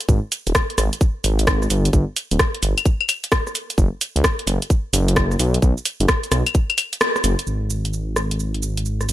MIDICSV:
0, 0, Header, 1, 3, 480
1, 0, Start_track
1, 0, Tempo, 461538
1, 90, Time_signature, 4, 2, 24, 8
1, 9493, End_track
2, 0, Start_track
2, 0, Title_t, "Detuned saw bass"
2, 0, Program_c, 0, 39
2, 88, Note_on_c, 0, 32, 97
2, 205, Note_off_c, 0, 32, 0
2, 487, Note_on_c, 0, 27, 85
2, 549, Note_off_c, 0, 27, 0
2, 809, Note_on_c, 0, 32, 94
2, 925, Note_off_c, 0, 32, 0
2, 1290, Note_on_c, 0, 32, 94
2, 1736, Note_off_c, 0, 32, 0
2, 1770, Note_on_c, 0, 31, 80
2, 1967, Note_off_c, 0, 31, 0
2, 2009, Note_on_c, 0, 31, 98
2, 2126, Note_off_c, 0, 31, 0
2, 2406, Note_on_c, 0, 26, 85
2, 2469, Note_off_c, 0, 26, 0
2, 2731, Note_on_c, 0, 31, 99
2, 2846, Note_off_c, 0, 31, 0
2, 3929, Note_on_c, 0, 30, 100
2, 4045, Note_off_c, 0, 30, 0
2, 4324, Note_on_c, 0, 37, 86
2, 4388, Note_off_c, 0, 37, 0
2, 4647, Note_on_c, 0, 30, 96
2, 4765, Note_off_c, 0, 30, 0
2, 5128, Note_on_c, 0, 30, 93
2, 5574, Note_off_c, 0, 30, 0
2, 5608, Note_on_c, 0, 35, 84
2, 5806, Note_off_c, 0, 35, 0
2, 5849, Note_on_c, 0, 35, 99
2, 5965, Note_off_c, 0, 35, 0
2, 6242, Note_on_c, 0, 30, 85
2, 6307, Note_off_c, 0, 30, 0
2, 6568, Note_on_c, 0, 35, 97
2, 6685, Note_off_c, 0, 35, 0
2, 7528, Note_on_c, 0, 30, 94
2, 7645, Note_off_c, 0, 30, 0
2, 7767, Note_on_c, 0, 32, 82
2, 9432, Note_off_c, 0, 32, 0
2, 9448, Note_on_c, 0, 31, 82
2, 9493, Note_off_c, 0, 31, 0
2, 9493, End_track
3, 0, Start_track
3, 0, Title_t, "Drums"
3, 5, Note_on_c, 9, 42, 64
3, 5, Note_on_c, 9, 82, 33
3, 89, Note_on_c, 9, 36, 118
3, 90, Note_off_c, 9, 82, 0
3, 90, Note_on_c, 9, 82, 42
3, 109, Note_off_c, 9, 42, 0
3, 193, Note_off_c, 9, 36, 0
3, 194, Note_off_c, 9, 82, 0
3, 331, Note_on_c, 9, 46, 97
3, 331, Note_on_c, 9, 82, 74
3, 435, Note_off_c, 9, 46, 0
3, 435, Note_off_c, 9, 82, 0
3, 487, Note_on_c, 9, 42, 61
3, 487, Note_on_c, 9, 82, 31
3, 570, Note_on_c, 9, 36, 112
3, 571, Note_off_c, 9, 82, 0
3, 571, Note_on_c, 9, 37, 116
3, 571, Note_on_c, 9, 82, 44
3, 591, Note_off_c, 9, 42, 0
3, 674, Note_off_c, 9, 36, 0
3, 675, Note_off_c, 9, 37, 0
3, 675, Note_off_c, 9, 82, 0
3, 728, Note_on_c, 9, 42, 35
3, 811, Note_on_c, 9, 37, 61
3, 811, Note_on_c, 9, 46, 87
3, 811, Note_on_c, 9, 82, 76
3, 832, Note_off_c, 9, 42, 0
3, 915, Note_off_c, 9, 37, 0
3, 915, Note_off_c, 9, 46, 0
3, 915, Note_off_c, 9, 82, 0
3, 966, Note_on_c, 9, 42, 67
3, 966, Note_on_c, 9, 82, 33
3, 1050, Note_on_c, 9, 36, 116
3, 1051, Note_off_c, 9, 82, 0
3, 1051, Note_on_c, 9, 82, 42
3, 1070, Note_off_c, 9, 42, 0
3, 1154, Note_off_c, 9, 36, 0
3, 1155, Note_off_c, 9, 82, 0
3, 1291, Note_on_c, 9, 46, 98
3, 1291, Note_on_c, 9, 82, 75
3, 1395, Note_off_c, 9, 46, 0
3, 1395, Note_off_c, 9, 82, 0
3, 1447, Note_on_c, 9, 42, 67
3, 1447, Note_on_c, 9, 82, 34
3, 1530, Note_on_c, 9, 36, 117
3, 1532, Note_off_c, 9, 82, 0
3, 1532, Note_on_c, 9, 37, 117
3, 1532, Note_on_c, 9, 82, 43
3, 1551, Note_off_c, 9, 42, 0
3, 1634, Note_off_c, 9, 36, 0
3, 1636, Note_off_c, 9, 37, 0
3, 1636, Note_off_c, 9, 82, 0
3, 1688, Note_on_c, 9, 37, 29
3, 1688, Note_on_c, 9, 82, 30
3, 1771, Note_off_c, 9, 82, 0
3, 1771, Note_on_c, 9, 46, 85
3, 1771, Note_on_c, 9, 82, 73
3, 1792, Note_off_c, 9, 37, 0
3, 1875, Note_off_c, 9, 46, 0
3, 1875, Note_off_c, 9, 82, 0
3, 1927, Note_on_c, 9, 42, 68
3, 1927, Note_on_c, 9, 82, 34
3, 2010, Note_on_c, 9, 36, 114
3, 2011, Note_off_c, 9, 82, 0
3, 2011, Note_on_c, 9, 82, 42
3, 2031, Note_off_c, 9, 42, 0
3, 2114, Note_off_c, 9, 36, 0
3, 2115, Note_off_c, 9, 82, 0
3, 2251, Note_on_c, 9, 46, 101
3, 2251, Note_on_c, 9, 82, 75
3, 2355, Note_off_c, 9, 46, 0
3, 2355, Note_off_c, 9, 82, 0
3, 2406, Note_on_c, 9, 42, 67
3, 2406, Note_on_c, 9, 82, 31
3, 2490, Note_off_c, 9, 82, 0
3, 2490, Note_on_c, 9, 36, 114
3, 2490, Note_on_c, 9, 37, 110
3, 2490, Note_on_c, 9, 82, 44
3, 2510, Note_off_c, 9, 42, 0
3, 2594, Note_off_c, 9, 36, 0
3, 2594, Note_off_c, 9, 37, 0
3, 2594, Note_off_c, 9, 82, 0
3, 2647, Note_on_c, 9, 42, 37
3, 2731, Note_on_c, 9, 46, 92
3, 2731, Note_on_c, 9, 82, 77
3, 2751, Note_off_c, 9, 42, 0
3, 2835, Note_off_c, 9, 46, 0
3, 2835, Note_off_c, 9, 82, 0
3, 2887, Note_on_c, 9, 42, 67
3, 2887, Note_on_c, 9, 75, 60
3, 2887, Note_on_c, 9, 82, 33
3, 2970, Note_on_c, 9, 36, 111
3, 2971, Note_off_c, 9, 82, 0
3, 2971, Note_on_c, 9, 82, 43
3, 2991, Note_off_c, 9, 42, 0
3, 2991, Note_off_c, 9, 75, 0
3, 3074, Note_off_c, 9, 36, 0
3, 3075, Note_off_c, 9, 82, 0
3, 3126, Note_on_c, 9, 75, 62
3, 3212, Note_off_c, 9, 75, 0
3, 3212, Note_on_c, 9, 46, 103
3, 3212, Note_on_c, 9, 75, 60
3, 3212, Note_on_c, 9, 82, 76
3, 3316, Note_off_c, 9, 46, 0
3, 3316, Note_off_c, 9, 75, 0
3, 3316, Note_off_c, 9, 82, 0
3, 3367, Note_on_c, 9, 42, 69
3, 3367, Note_on_c, 9, 82, 33
3, 3449, Note_on_c, 9, 36, 110
3, 3452, Note_off_c, 9, 82, 0
3, 3452, Note_on_c, 9, 37, 113
3, 3452, Note_on_c, 9, 82, 44
3, 3471, Note_off_c, 9, 42, 0
3, 3553, Note_off_c, 9, 36, 0
3, 3556, Note_off_c, 9, 37, 0
3, 3556, Note_off_c, 9, 82, 0
3, 3608, Note_on_c, 9, 37, 29
3, 3608, Note_on_c, 9, 82, 31
3, 3693, Note_off_c, 9, 82, 0
3, 3693, Note_on_c, 9, 46, 88
3, 3693, Note_on_c, 9, 82, 71
3, 3712, Note_off_c, 9, 37, 0
3, 3797, Note_off_c, 9, 46, 0
3, 3797, Note_off_c, 9, 82, 0
3, 3849, Note_on_c, 9, 42, 68
3, 3849, Note_on_c, 9, 82, 34
3, 3930, Note_on_c, 9, 36, 109
3, 3932, Note_off_c, 9, 82, 0
3, 3932, Note_on_c, 9, 82, 42
3, 3953, Note_off_c, 9, 42, 0
3, 4034, Note_off_c, 9, 36, 0
3, 4036, Note_off_c, 9, 82, 0
3, 4173, Note_on_c, 9, 46, 101
3, 4173, Note_on_c, 9, 82, 73
3, 4277, Note_off_c, 9, 46, 0
3, 4277, Note_off_c, 9, 82, 0
3, 4328, Note_on_c, 9, 42, 65
3, 4328, Note_on_c, 9, 82, 31
3, 4410, Note_on_c, 9, 36, 113
3, 4412, Note_off_c, 9, 82, 0
3, 4412, Note_on_c, 9, 37, 111
3, 4412, Note_on_c, 9, 82, 43
3, 4432, Note_off_c, 9, 42, 0
3, 4514, Note_off_c, 9, 36, 0
3, 4516, Note_off_c, 9, 37, 0
3, 4516, Note_off_c, 9, 82, 0
3, 4567, Note_on_c, 9, 42, 38
3, 4652, Note_on_c, 9, 46, 95
3, 4652, Note_on_c, 9, 82, 77
3, 4671, Note_off_c, 9, 42, 0
3, 4756, Note_off_c, 9, 46, 0
3, 4756, Note_off_c, 9, 82, 0
3, 4807, Note_on_c, 9, 42, 69
3, 4807, Note_on_c, 9, 82, 32
3, 4889, Note_on_c, 9, 36, 111
3, 4893, Note_off_c, 9, 82, 0
3, 4893, Note_on_c, 9, 82, 42
3, 4911, Note_off_c, 9, 42, 0
3, 4993, Note_off_c, 9, 36, 0
3, 4997, Note_off_c, 9, 82, 0
3, 5132, Note_on_c, 9, 46, 110
3, 5132, Note_on_c, 9, 82, 73
3, 5236, Note_off_c, 9, 46, 0
3, 5236, Note_off_c, 9, 82, 0
3, 5287, Note_on_c, 9, 42, 71
3, 5287, Note_on_c, 9, 82, 33
3, 5369, Note_on_c, 9, 36, 108
3, 5371, Note_off_c, 9, 82, 0
3, 5371, Note_on_c, 9, 37, 113
3, 5371, Note_on_c, 9, 82, 42
3, 5391, Note_off_c, 9, 42, 0
3, 5473, Note_off_c, 9, 36, 0
3, 5475, Note_off_c, 9, 37, 0
3, 5475, Note_off_c, 9, 82, 0
3, 5527, Note_on_c, 9, 37, 31
3, 5527, Note_on_c, 9, 82, 29
3, 5610, Note_off_c, 9, 82, 0
3, 5610, Note_on_c, 9, 46, 92
3, 5610, Note_on_c, 9, 82, 72
3, 5631, Note_off_c, 9, 37, 0
3, 5714, Note_off_c, 9, 46, 0
3, 5714, Note_off_c, 9, 82, 0
3, 5765, Note_on_c, 9, 42, 70
3, 5765, Note_on_c, 9, 82, 33
3, 5849, Note_on_c, 9, 36, 114
3, 5850, Note_off_c, 9, 82, 0
3, 5850, Note_on_c, 9, 82, 40
3, 5869, Note_off_c, 9, 42, 0
3, 5953, Note_off_c, 9, 36, 0
3, 5954, Note_off_c, 9, 82, 0
3, 6006, Note_on_c, 9, 82, 28
3, 6089, Note_off_c, 9, 82, 0
3, 6089, Note_on_c, 9, 46, 110
3, 6089, Note_on_c, 9, 82, 70
3, 6193, Note_off_c, 9, 46, 0
3, 6193, Note_off_c, 9, 82, 0
3, 6244, Note_on_c, 9, 42, 65
3, 6244, Note_on_c, 9, 82, 31
3, 6328, Note_off_c, 9, 82, 0
3, 6328, Note_on_c, 9, 37, 115
3, 6328, Note_on_c, 9, 82, 41
3, 6329, Note_on_c, 9, 36, 112
3, 6348, Note_off_c, 9, 42, 0
3, 6432, Note_off_c, 9, 37, 0
3, 6432, Note_off_c, 9, 82, 0
3, 6433, Note_off_c, 9, 36, 0
3, 6485, Note_on_c, 9, 42, 37
3, 6485, Note_on_c, 9, 82, 27
3, 6569, Note_off_c, 9, 82, 0
3, 6569, Note_on_c, 9, 37, 66
3, 6569, Note_on_c, 9, 46, 98
3, 6569, Note_on_c, 9, 82, 74
3, 6589, Note_off_c, 9, 42, 0
3, 6673, Note_off_c, 9, 37, 0
3, 6673, Note_off_c, 9, 46, 0
3, 6673, Note_off_c, 9, 82, 0
3, 6724, Note_on_c, 9, 42, 66
3, 6724, Note_on_c, 9, 75, 60
3, 6724, Note_on_c, 9, 82, 31
3, 6808, Note_off_c, 9, 82, 0
3, 6808, Note_on_c, 9, 82, 40
3, 6809, Note_on_c, 9, 36, 110
3, 6828, Note_off_c, 9, 42, 0
3, 6828, Note_off_c, 9, 75, 0
3, 6912, Note_off_c, 9, 82, 0
3, 6913, Note_off_c, 9, 36, 0
3, 6965, Note_on_c, 9, 42, 39
3, 6965, Note_on_c, 9, 75, 60
3, 7049, Note_off_c, 9, 75, 0
3, 7049, Note_on_c, 9, 46, 109
3, 7049, Note_on_c, 9, 75, 56
3, 7049, Note_on_c, 9, 82, 73
3, 7069, Note_off_c, 9, 42, 0
3, 7153, Note_off_c, 9, 46, 0
3, 7153, Note_off_c, 9, 75, 0
3, 7153, Note_off_c, 9, 82, 0
3, 7205, Note_on_c, 9, 42, 70
3, 7205, Note_on_c, 9, 82, 31
3, 7289, Note_off_c, 9, 82, 0
3, 7289, Note_on_c, 9, 37, 114
3, 7289, Note_on_c, 9, 82, 42
3, 7309, Note_off_c, 9, 42, 0
3, 7393, Note_off_c, 9, 37, 0
3, 7393, Note_off_c, 9, 82, 0
3, 7445, Note_on_c, 9, 37, 57
3, 7445, Note_on_c, 9, 82, 28
3, 7529, Note_off_c, 9, 82, 0
3, 7529, Note_on_c, 9, 46, 92
3, 7529, Note_on_c, 9, 82, 68
3, 7549, Note_off_c, 9, 37, 0
3, 7633, Note_off_c, 9, 46, 0
3, 7633, Note_off_c, 9, 82, 0
3, 7685, Note_on_c, 9, 42, 70
3, 7685, Note_on_c, 9, 82, 32
3, 7769, Note_off_c, 9, 82, 0
3, 7769, Note_on_c, 9, 82, 34
3, 7789, Note_off_c, 9, 42, 0
3, 7873, Note_off_c, 9, 82, 0
3, 8009, Note_on_c, 9, 82, 62
3, 8113, Note_off_c, 9, 82, 0
3, 8165, Note_on_c, 9, 42, 55
3, 8165, Note_on_c, 9, 82, 25
3, 8250, Note_off_c, 9, 82, 0
3, 8250, Note_on_c, 9, 82, 35
3, 8269, Note_off_c, 9, 42, 0
3, 8354, Note_off_c, 9, 82, 0
3, 8490, Note_on_c, 9, 37, 62
3, 8490, Note_on_c, 9, 82, 63
3, 8594, Note_off_c, 9, 37, 0
3, 8594, Note_off_c, 9, 82, 0
3, 8646, Note_on_c, 9, 42, 57
3, 8646, Note_on_c, 9, 82, 27
3, 8732, Note_off_c, 9, 82, 0
3, 8732, Note_on_c, 9, 82, 34
3, 8750, Note_off_c, 9, 42, 0
3, 8836, Note_off_c, 9, 82, 0
3, 8886, Note_on_c, 9, 42, 33
3, 8970, Note_on_c, 9, 82, 60
3, 8990, Note_off_c, 9, 42, 0
3, 9074, Note_off_c, 9, 82, 0
3, 9125, Note_on_c, 9, 42, 60
3, 9125, Note_on_c, 9, 82, 27
3, 9210, Note_off_c, 9, 82, 0
3, 9210, Note_on_c, 9, 82, 36
3, 9229, Note_off_c, 9, 42, 0
3, 9314, Note_off_c, 9, 82, 0
3, 9367, Note_on_c, 9, 37, 29
3, 9367, Note_on_c, 9, 82, 25
3, 9451, Note_off_c, 9, 82, 0
3, 9451, Note_on_c, 9, 42, 46
3, 9451, Note_on_c, 9, 82, 58
3, 9471, Note_off_c, 9, 37, 0
3, 9493, Note_off_c, 9, 42, 0
3, 9493, Note_off_c, 9, 82, 0
3, 9493, End_track
0, 0, End_of_file